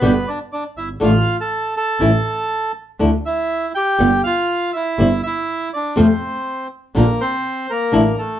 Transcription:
Already playing: bandoneon B3 B4
0.01 double bass G1, nylon-string guitar B2 D3 G3 B3 G4
0.28 bandoneon D4 D5
0.52 bandoneon D4 D5
0.77 double bass G1, bandoneon E4 E5
1.00 double bass A1, nylon-string guitar D3 A3 D4 F4, bandoneon F4 F5
1.41 bandoneon A4 A5
1.77 bandoneon A4 A5
2.00 double bass A1, nylon-string guitar E3 A3 C#4 E4
2.99 double bass D2, nylon-string guitar D3 A3 D4 E4
3.26 bandoneon E4 E5
3.75 bandoneon G4 G5
3.98 double bass G1, nylon-string guitar G3 B3 F4
4.24 bandoneon F4 F5
4.73 bandoneon E4 E5
4.99 double bass G1, nylon-string guitar G3 C4 E4
5.23 bandoneon E4 E5
5.73 bandoneon D4 D5
5.96 double bass F2, nylon-string guitar C3 F3 A3 C4 F4, bandoneon C5
6.00 bandoneon C4
6.95 double bass A#1, nylon-string guitar D3 G3 D4 F4, bandoneon A#3 A#4
7.21 bandoneon C4 C5
7.70 bandoneon A#3 A#4
7.92 double bass A1, nylon-string guitar D3 A3 D4 E4
8.19 bandoneon A3 A4

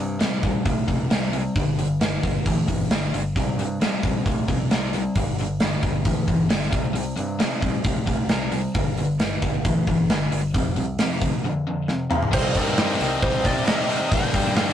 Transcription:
Already playing: picked electric bass G2, overdriven electric guitar C3 G3
0.19 overdriven electric guitar C3 G3, snare, open hi-hat
0.43 picked electric bass A1, overdriven electric guitar C3 G3, kick, open hi-hat
0.65 picked electric bass C2, overdriven electric guitar C3 A3, kick, open hi-hat
0.88 picked electric bass C2, overdriven electric guitar C3 A3, kick, open hi-hat
1.10 overdriven electric guitar C3 G3, snare, open hi-hat
1.33 overdriven electric guitar C3 G3, open hi-hat
1.56 picked electric bass G1, overdriven electric guitar G2 D3, kick, open hi-hat
1.79 overdriven electric guitar G2 D3, open hi-hat
2.01 overdriven electric guitar G2 D3, snare, open hi-hat
2.23 picked electric bass G1, overdriven electric guitar G2 D3, kick, open hi-hat
2.46 picked electric bass D2, overdriven electric guitar G2 E3, kick, open hi-hat
2.68 picked electric bass G1, overdriven electric guitar G2 E3, kick, open hi-hat
2.91 overdriven electric guitar G2 D3, snare, open hi-hat
3.13 picked electric bass G1, overdriven electric guitar G2 D3, open hi-hat
3.36 picked electric bass C2, overdriven electric guitar C3 G3, kick, open hi-hat
3.57 picked electric bass G2, overdriven electric guitar C3 G3, open hi-hat
3.81 overdriven electric guitar C3 G3, snare, open hi-hat
4.03 picked electric bass A1, overdriven electric guitar C3 G3, kick, open hi-hat
4.26 picked electric bass C2, overdriven electric guitar C3 A3, kick, open hi-hat
4.48 picked electric bass C2, overdriven electric guitar C3 A3, kick, open hi-hat
4.71 overdriven electric guitar C3 G3, snare, open hi-hat
4.93 overdriven electric guitar C3 G3, open hi-hat
5.15 picked electric bass G1, overdriven electric guitar G2 D3, kick, open hi-hat
5.38 overdriven electric guitar G2 D3, open hi-hat
5.60 overdriven electric guitar G2 D3, snare, open hi-hat
5.83 picked electric bass G1, overdriven electric guitar G2 D3, kick, open hi-hat
6.05 picked electric bass D2, overdriven electric guitar G2 E3, kick, open hi-hat
6.27 picked electric bass G1, overdriven electric guitar G2 E3, kick, open hi-hat
6.49 overdriven electric guitar G2 D3, snare, open hi-hat
6.71 picked electric bass C2, overdriven electric guitar C3 G3, kick, open hi-hat
6.93 overdriven electric guitar C3 G3, open hi-hat
7.16 picked electric bass G2, overdriven electric guitar C3 G3, open hi-hat
7.39 overdriven electric guitar C3 G3, snare, open hi-hat
7.61 picked electric bass A1, overdriven electric guitar C3 G3, kick, open hi-hat
7.84 picked electric bass C2, overdriven electric guitar C3 A3, kick, open hi-hat
8.06 picked electric bass C2, overdriven electric guitar C3 A3, kick, open hi-hat
8.29 overdriven electric guitar C3 G3, snare, open hi-hat
8.52 overdriven electric guitar C3 G3, open hi-hat
8.74 picked electric bass G1, overdriven electric guitar G2 D3, kick, open hi-hat
8.97 overdriven electric guitar G2 D3, open hi-hat
9.20 overdriven electric guitar G2 D3, snare, open hi-hat
9.42 picked electric bass G1, overdriven electric guitar G2 D3, kick, open hi-hat
9.65 picked electric bass D2, overdriven electric guitar G2 E3, kick, open hi-hat
9.87 picked electric bass G1, overdriven electric guitar G2 E3, kick, open hi-hat
10.10 overdriven electric guitar G2 D3, snare, open hi-hat
10.31 picked electric bass G1, overdriven electric guitar G2 D3, open hi-hat
10.54 picked electric bass F1, overdriven electric guitar F2 C3, kick, open hi-hat
10.76 picked electric bass C2, overdriven electric guitar F2 C3, open hi-hat
10.99 overdriven electric guitar F2 C3, snare, open hi-hat
11.21 picked electric bass D2, overdriven electric guitar F2 C3, kick, open hi-hat
11.44 overdriven electric guitar F2 D3
11.67 overdriven electric guitar F2 D3
11.88 overdriven electric guitar F2 C3, snare
12.10 overdriven electric guitar F2 C3, mid tom
12.22 floor tom
12.31 picked electric bass C2, overdriven electric guitar C3 D#3 G3 C4 G4, tonewheel organ D#4 G4 C5 D#5, electric slide guitar C5, kick, crash
12.35 distorted electric guitar D#4
12.54 picked electric bass G2, overdriven electric guitar C3 D#3 G3 C4 G4, distorted electric guitar D#4, electric slide guitar A#4, kick, open hi-hat
12.66 snare
12.76 overdriven electric guitar C3 D#3 G3 C4 G4, distorted electric guitar D#4, snare, clap, open hi-hat
13.00 picked electric bass C2, overdriven electric guitar C3 D#3 G3 C4 G4, distorted electric guitar D#4, open hi-hat
13.22 picked electric bass C2, overdriven electric guitar C3 D#3 G3 C4 G4, distorted electric guitar D#4, electric slide guitar C5, kick, open hi-hat
13.45 overdriven electric guitar C3 D#3 G3 C4 G4, picked electric bass C3, distorted electric guitar D#4, electric slide guitar D5, kick, open hi-hat
13.66 overdriven electric guitar C3 D#3 G3 C4 G4, distorted electric guitar D#4, electric slide guitar D#5, snare, clap, open hi-hat
13.88 overdriven electric guitar C3 D#3 G3 C4 G4, distorted electric guitar D#4, open hi-hat
14.09 picked electric bass G1, overdriven electric guitar G2 D3 G3 A#3 D4, tonewheel organ D4 G4 A#4 D5, electric slide guitar G5, kick, open hi-hat
14.13 overdriven electric guitar G4
14.31 overdriven electric guitar G2 D3 G3 A#3 D4 G4, picked electric bass G2, kick, snare, open hi-hat
14.55 overdriven electric guitar G2 D3 G3 A#3 D4 G4, snare, clap, open hi-hat

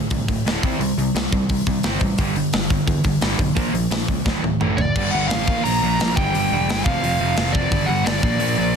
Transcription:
0.10 picked electric bass C2, distorted electric guitar D2 A2, kick, open hi-hat
0.28 picked electric bass D1, distorted electric guitar D2 A2, kick, open hi-hat
0.45 picked electric bass D1, distorted electric guitar D2 A2 D3, snare, open hi-hat
0.62 picked electric bass C2, distorted electric guitar C3 G3 C4, kick, open hi-hat
0.80 picked electric bass C2, distorted electric guitar C3 G3, open hi-hat
0.98 picked electric bass C2, distorted electric guitar C3 G3, open hi-hat
1.15 picked electric bass C2, distorted electric guitar C3 G3, snare, open hi-hat
1.32 picked electric bass C2, distorted electric guitar C3 G3, kick, open hi-hat
1.49 picked electric bass C2, distorted electric guitar C3 G3, kick, open hi-hat
1.66 picked electric bass C2, distorted electric guitar C3 G3, kick, open hi-hat
1.83 picked electric bass G1, distorted electric guitar C3 G3 C4, snare, open hi-hat
2.00 picked electric bass A1, distorted electric guitar C3 G3, kick, open hi-hat
2.18 picked electric bass G1, distorted electric guitar G2 D3 G3, kick, open hi-hat
2.36 distorted electric guitar G2 D3, open hi-hat
2.53 picked electric bass G1, distorted electric guitar G2 D3, snare, open hi-hat
2.70 distorted electric guitar G2 D3, kick, open hi-hat
2.87 picked electric bass E2, distorted electric guitar G2 D3, kick, open hi-hat
3.04 picked electric bass G1, distorted electric guitar G2 D3, kick, open hi-hat
3.21 picked electric bass G1, distorted electric guitar G2 D3 G3, snare, open hi-hat
3.39 picked electric bass B1, distorted electric guitar G2 D3, kick, open hi-hat
3.56 picked electric bass A#1, distorted electric guitar A#2 F3 A#3, kick, open hi-hat
3.73 picked electric bass A#1, distorted electric guitar A#2 F3, open hi-hat
3.91 picked electric bass A#1, distorted electric guitar A#2 F3, snare, open hi-hat
4.08 picked electric bass C#2, distorted electric guitar A#2 F3, kick, open hi-hat
4.25 picked electric bass D1, distorted electric guitar D2 A2 D3, kick, snare
4.43 picked electric bass D1, distorted electric guitar D2 A2, high tom
4.61 picked electric bass A1, distorted electric guitar D2 A2 D3, mid tom
4.77 picked electric bass F#1, distorted electric guitar D2 A2, lead electric guitar D5, floor tom
4.95 picked electric bass G1, distorted electric guitar G2 D3 G3, kick, crash
5.11 picked electric bass G1, distorted electric guitar G2 D3 G3, lead electric guitar F#5
5.28 picked electric bass A1, distorted electric guitar G2 D3 G3, lead electric guitar F5, snare, open hi-hat
5.47 picked electric bass A#1, distorted electric guitar A#2 F3 A#3, kick
5.64 picked electric bass A#1, distorted electric guitar A#2 F3 A#3, lead electric guitar A#5, open hi-hat
5.82 picked electric bass A#1, distorted electric guitar A#2 F3 A#3
5.99 picked electric bass A#1, distorted electric guitar A#2 F3 A#3, snare, open hi-hat
6.16 picked electric bass G1, distorted electric guitar G2 D3 G3, lead electric guitar G5, kick
6.34 picked electric bass G1, distorted electric guitar G2 D3 G3, open hi-hat
6.51 picked electric bass E1, distorted electric guitar G2 D3 G3
6.68 picked electric bass G1, distorted electric guitar G2 D3 G3, snare, open hi-hat
6.84 picked electric bass F1, distorted electric guitar F2 C3 F3, lead electric guitar F5, kick
7.03 picked electric bass F1, distorted electric guitar F2 C3 F3, open hi-hat
7.19 picked electric bass F1, distorted electric guitar F2 C3 F3
7.36 picked electric bass F1, distorted electric guitar F2 C3 F3, snare, open hi-hat
7.53 distorted electric guitar F2 C3 F3, lead electric guitar D5, kick
7.71 picked electric bass G1, distorted electric guitar G2 D3 G3, kick, open hi-hat
7.86 picked electric bass G1, distorted electric guitar G2 D3 G3, lead electric guitar F#5
8.05 picked electric bass G1, distorted electric guitar G2 D3 G3, lead electric guitar D5, snare, open hi-hat
8.23 picked electric bass A#1, distorted electric guitar A#2 F3 A#3, kick
8.40 picked electric bass A#1, distorted electric guitar A#2 F3 A#3, open hi-hat
8.57 picked electric bass A#1, distorted electric guitar A#2 F3 A#3

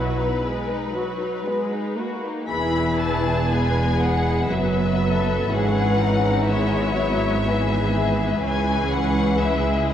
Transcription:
Already playing: double bass section B1, cello section B2, viola section F#3 E4, violin section F#4 B4
0.18 violin section D#4
0.41 viola section G#3, violin section B3
0.69 violin section D#4
0.93 viola section F#3, violin section F#4
1.20 violin section D#4
1.45 viola section G#3, violin section B3
1.71 violin section D#4
1.97 viola section A#3, violin section F#4
2.25 violin section D#4
2.49 double bass section E1, cello section E2, viola section E3 E4, violin section G#4 B4 B5
3.01 violin section A5
3.52 viola section G#3 B3, violin section G#5
4.02 violin section F#5
4.50 double bass section F#1, cello section F#2, viola section F#3 B3, violin section B4 E5
5.04 violin section A4
5.50 double bass section G#1, cello section G#2, viola section E3 C#4, violin section G#4 B4 F#5
6.01 violin section D#4
6.48 viola section G#3 B3, violin section E4 C#5 E5
6.96 viola section F#3
7.45 viola section E3 B3, violin section G#4 B4
8.42 cello section C#2, double bass section C#2, viola section E3 C#4, violin section G#4 G#5
8.93 violin section F#5
9.40 viola section G#3 E4, violin section G#4 E5
9.87 violin section D#5

